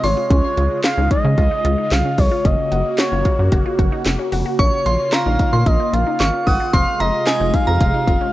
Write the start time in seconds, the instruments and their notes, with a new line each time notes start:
Already playing: analog synth pad C3 G#3 F4
0.04 analog synth bass G#1, synth arpeggio sound F4, analog synth lead C#5, synth bell C6, open hi-hat
0.17 synth arpeggio sound F4
0.31 analog synth bass C#2, analog synth pad C#3 G#3, synth arpeggio sound C#4, analog synth lead C#5, kick, closed hi-hat
0.57 analog synth bass C#2, synth arpeggio sound F4, closed hi-hat
0.84 synth arpeggio sound F4, analog synth lead F5, snare, clap, closed hi-hat
0.98 analog synth bass C#2, synth arpeggio sound D#4
1.11 synth arpeggio sound D#4, analog synth lead D#5, kick, closed hi-hat
1.24 analog synth bass C#3
1.38 analog synth bass C#2, synth arpeggio sound F4, kick, closed hi-hat
1.51 synth arpeggio sound D#4
1.65 analog synth bass C#2, synth arpeggio sound F4, closed hi-hat
1.78 synth arpeggio sound D#4
1.91 analog synth bass C2, analog synth lead F5, snare, clap, closed hi-hat
2.05 synth arpeggio sound C#4
2.18 analog synth bass C2, synth arpeggio sound F4, analog synth lead C#5, kick, open hi-hat
2.31 synth arpeggio sound F4
2.45 analog synth bass F#1, analog synth pad A#3 F#4, synth arpeggio sound C#4, analog synth lead D#5, kick, closed hi-hat
2.72 analog synth bass F#1, synth arpeggio sound F#4, closed hi-hat
2.98 synth arpeggio sound F#4, analog synth lead C#5, snare, clap, closed hi-hat
3.12 analog synth bass F#1, synth arpeggio sound F4
3.25 synth arpeggio sound F4, kick, closed hi-hat
3.39 analog synth bass F#2
3.52 analog synth bass F#1, synth arpeggio sound F#4, kick, closed hi-hat
3.66 synth arpeggio sound F4
3.79 analog synth bass F#1, synth arpeggio sound F#4, kick, closed hi-hat
3.92 synth arpeggio sound D#4
4.06 analog synth bass F1, snare, clap, closed hi-hat
4.19 synth arpeggio sound C#4
4.32 analog synth bass F1, synth arpeggio sound F#4, open hi-hat
4.46 synth arpeggio sound F#4
4.59 analog synth bass A#1, analog synth pad A#3 F4, synth arpeggio sound C#4, analog synth lead C#5, synth bell C#6, kick, closed hi-hat
4.86 analog synth bass A#1, synth arpeggio sound F4, synth bell C6, closed hi-hat
5.13 synth arpeggio sound F4, analog synth lead F5, synth bell A#5, snare, clap, closed hi-hat
5.26 analog synth bass A#1, synth arpeggio sound D#4
5.39 synth arpeggio sound D#4, kick, closed hi-hat
5.53 analog synth bass A#2, synth bell C6
5.66 analog synth bass A#1, synth arpeggio sound F4, analog synth lead D#5, kick, closed hi-hat
5.80 synth arpeggio sound D#4
5.93 analog synth bass A#1, synth arpeggio sound F4, analog synth lead F5, closed hi-hat
6.07 synth arpeggio sound D#4
6.20 analog synth bass G#1, synth bell C#6, snare, clap, closed hi-hat
6.33 synth arpeggio sound C#4
6.47 analog synth bass G#1, synth arpeggio sound F4, analog synth lead F#5, synth bell D#6, kick, open hi-hat
6.60 synth arpeggio sound F4
6.73 analog synth bass F1, analog synth pad C3 G#3, synth arpeggio sound C4, analog synth lead F5, synth bell C6, kick, closed hi-hat
7.00 analog synth bass F1, synth arpeggio sound F4, analog synth lead D#5, synth bell A#5, closed hi-hat
7.27 synth arpeggio sound F4, synth bell G#5, snare, clap, closed hi-hat
7.41 analog synth bass F1, synth arpeggio sound D#4
7.54 synth arpeggio sound D#4, analog synth lead F5, kick, closed hi-hat
7.67 analog synth bass F2, synth bell A#5
7.80 analog synth bass F1, synth arpeggio sound F4, kick, closed hi-hat
7.94 synth arpeggio sound D#4
8.07 analog synth bass F1, synth arpeggio sound F4, kick, closed hi-hat
8.21 synth arpeggio sound C#4